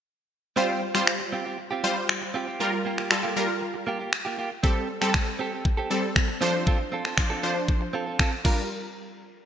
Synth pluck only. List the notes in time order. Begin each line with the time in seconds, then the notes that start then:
0.57 G3 F4 C5
0.95 G3 F4 C5
1.84 G3 F4 C5
2.60 G3 F4 A#4
3.11 G3 F4 A4
3.36 G3 F4 A#4
4.63 G3 C4 A4
5.02 G3 C4 A4
5.90 G3 C4 A4
6.41 F3 D4 C5
7.18 F3 D4 C5
7.43 F3 D4 C5
8.45 G3 F4 A#4